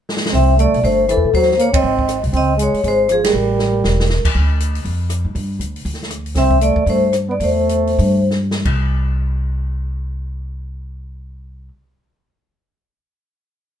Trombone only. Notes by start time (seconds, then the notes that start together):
0.32 C4
0.58 A3
0.83 A3
1.08 E3
1.33 F#3
1.58 A#3
1.73 C4
2.33 C4
2.57 G#3
2.84 G#3
3.11 F3
3.25 G3
6.36 C4
6.61 A3
6.87 A3
7.29 B3
7.41 A3